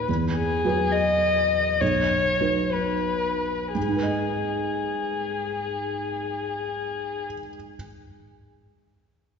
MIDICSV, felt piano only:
0, 0, Header, 1, 2, 480
1, 0, Start_track
1, 0, Key_signature, 5, "minor"
1, 0, Tempo, 575264
1, 68, Time_signature, 3, 2, 24, 8
1, 1511, Tempo, 624350
1, 2471, Tempo, 695249
1, 2951, Tempo, 665927
1, 7013, End_track
2, 0, Start_track
2, 0, Title_t, "Felt piano"
2, 0, Program_c, 0, 0
2, 0, Control_c, 0, 64, 127
2, 0, Note_on_c, 0, 39, 38
2, 0, Note_on_c, 0, 46, 31
2, 0, Note_on_c, 0, 63, 29
2, 0, Note_on_c, 0, 68, 33
2, 73, Note_on_c, 0, 40, 38
2, 82, Control_c, 0, 64, 0
2, 84, Note_off_c, 0, 46, 0
2, 85, Note_off_c, 0, 63, 0
2, 86, Note_off_c, 0, 68, 0
2, 88, Note_off_c, 0, 39, 0
2, 217, Control_c, 0, 64, 127
2, 525, Note_off_c, 0, 40, 0
2, 539, Note_on_c, 0, 54, 31
2, 541, Note_on_c, 0, 66, 34
2, 551, Note_on_c, 0, 71, 36
2, 1479, Note_off_c, 0, 54, 0
2, 1480, Note_off_c, 0, 66, 0
2, 1485, Note_off_c, 0, 71, 0
2, 1509, Note_on_c, 0, 35, 36
2, 1525, Control_c, 0, 64, 0
2, 1645, Control_c, 0, 64, 127
2, 1964, Note_off_c, 0, 35, 0
2, 1969, Note_on_c, 0, 54, 28
2, 1971, Note_on_c, 0, 71, 33
2, 1972, Note_on_c, 0, 63, 29
2, 2919, Note_off_c, 0, 54, 0
2, 2920, Note_off_c, 0, 63, 0
2, 2920, Note_off_c, 0, 71, 0
2, 2946, Note_on_c, 0, 44, 23
2, 2968, Control_c, 0, 64, 0
2, 2995, Note_on_c, 0, 56, 27
2, 3048, Note_on_c, 0, 63, 25
2, 3101, Note_on_c, 0, 71, 24
2, 3102, Control_c, 0, 64, 127
2, 3149, Note_on_c, 0, 75, 27
2, 5476, Note_off_c, 0, 44, 0
2, 5525, Note_off_c, 0, 56, 0
2, 5577, Note_off_c, 0, 63, 0
2, 5631, Note_off_c, 0, 71, 0
2, 5679, Note_off_c, 0, 75, 0
2, 5837, Control_c, 0, 64, 0
2, 7013, End_track
0, 0, End_of_file